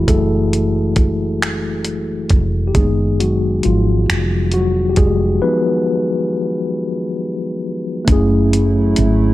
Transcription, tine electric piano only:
0.00 2.77 E3 medium
0.00 2.77 F#3 medium
0.00 2.77 G#3 medium
0.00 0.09 A3 soft
0.00 0.10 E4 medium
0.00 2.77 F#4 medium
0.00 0.08 G#4 medium
0.08 2.27 A3 medium
0.08 0.68 E4 medium
0.08 0.67 G#4 medium
0.08 2.26 A4 medium
2.68 2.75 G4 medium
2.75 5.38 D#3 medium
2.75 3.17 G#3 medium
2.75 5.38 B3 soft
2.75 5.39 D#4 medium
2.75 3.21 G#4 medium
3.20 3.62 F#3 medium
3.20 3.65 F#4 medium
3.65 4.50 F3 medium
3.65 4.56 F4 medium
4.54 4.88 F#3 medium
4.54 4.92 F#4 medium
4.90 4.97 G4 medium
4.98 5.39 G#3 medium
4.98 5.43 G#4 medium
5.42 8.04 F3 medium
5.42 6.38 B3 medium
5.42 8.05 D#4 medium
5.42 6.38 B4 medium
8.05 9.34 A3 medium
8.05 9.34 C#4 medium
8.10 9.34 E4 medium
8.10 9.34 G#4 medium

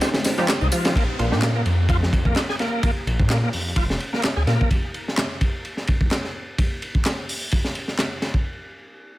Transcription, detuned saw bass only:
0.61 0.70 C2 loud
0.96 1.06 A#1 loud
1.19 1.33 A#1 medium
1.32 1.63 A#2 loud
1.66 2.33 F2 medium
3.06 3.21 A#1 medium
3.19 3.50 A#2 loud
3.54 3.73 F2 loud
3.76 3.96 F1 medium
4.36 4.45 D2 medium
4.47 4.57 A#2 loud

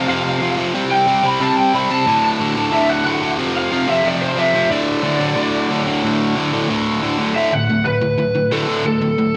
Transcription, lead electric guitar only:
0.09 0.54 F5 medium
0.91 1.25 G5 loud
1.26 1.42 B5 loud
1.41 1.56 A5 loud
1.56 1.73 G5 loud
1.73 1.90 B5 loud
1.91 2.24 A5 loud
2.25 2.72 A5 loud
2.72 2.89 E5 loud
2.89 3.04 F#5 loud
3.05 3.28 F#5 loud
3.56 3.89 F5 loud
3.89 4.05 E5 medium
4.07 4.21 D5 loud
4.21 4.38 C5 medium
4.38 4.69 E5 loud
4.70 5.82 D5 medium
7.36 7.53 E5 medium
7.53 7.87 F#5 medium
7.85 8.52 B4 medium
8.52 8.83 A4 medium
8.87 9.37 A4 medium

